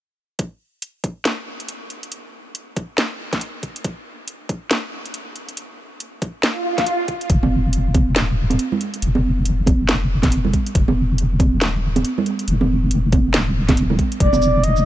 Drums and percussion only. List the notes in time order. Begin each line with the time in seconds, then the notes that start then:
0.39 kick, closed hi-hat
0.82 closed hi-hat
1.04 kick, closed hi-hat
1.25 snare, closed hi-hat
1.60 closed hi-hat
1.69 closed hi-hat
1.90 closed hi-hat
2.03 closed hi-hat
2.12 closed hi-hat
2.55 closed hi-hat
2.76 kick, closed hi-hat
2.98 snare, closed hi-hat
3.33 kick, snare, closed hi-hat
3.41 closed hi-hat
3.63 kick, closed hi-hat
3.76 closed hi-hat
3.84 kick, closed hi-hat
4.28 closed hi-hat
4.49 kick, closed hi-hat
4.71 snare, closed hi-hat
5.05 closed hi-hat
5.14 closed hi-hat
5.36 closed hi-hat
5.49 closed hi-hat
5.57 closed hi-hat
6.00 closed hi-hat
6.22 kick, closed hi-hat
6.43 snare, closed hi-hat
6.78 kick, snare, closed hi-hat
6.87 closed hi-hat
7.08 kick, closed hi-hat
7.21 closed hi-hat
7.30 kick, closed hi-hat
7.43 high conga
7.73 closed hi-hat
7.94 kick, closed hi-hat, high conga
8.16 snare, closed hi-hat
8.50 closed hi-hat, high conga
8.59 closed hi-hat
8.72 low conga
8.81 closed hi-hat
8.94 closed hi-hat
9.02 closed hi-hat
9.15 high conga
9.45 closed hi-hat
9.66 kick, closed hi-hat, high conga
9.89 snare, closed hi-hat
10.23 kick, snare, closed hi-hat, high conga
10.32 closed hi-hat
10.45 low conga
10.53 kick, closed hi-hat
10.66 closed hi-hat
10.75 kick, closed hi-hat
10.88 high conga
11.18 closed hi-hat
11.39 kick, closed hi-hat, high conga
11.61 snare, closed hi-hat
11.96 closed hi-hat, high conga
12.05 closed hi-hat
12.18 low conga
12.26 closed hi-hat
12.39 closed hi-hat
12.48 closed hi-hat
12.61 high conga
12.91 closed hi-hat
13.12 kick, closed hi-hat, high conga
13.34 snare, closed hi-hat
13.69 kick, snare, closed hi-hat, high conga
13.77 closed hi-hat
13.90 low conga
13.99 kick, closed hi-hat
14.12 closed hi-hat
14.20 kick, closed hi-hat
14.33 high conga, shaker
14.42 shaker
14.64 closed hi-hat
14.77 shaker